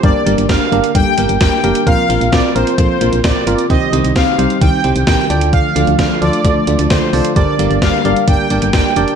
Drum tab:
HH |x-xxx-xxx-xxx-xx|x-xxx-xxx-xxx-xx|x-xxx-xxx-xxx-xx|x-xxx-xxx-xxx-ox|
SD |----o-------o---|----o-------o---|----o-------o---|----o-------o---|
BD |o---o---o---o---|o---o---o---o---|o---o---o---o---|o---o---o---o---|

HH |x-xxx-xxx-xxx-xx|
SD |----o-------o---|
BD |o---o---o---o---|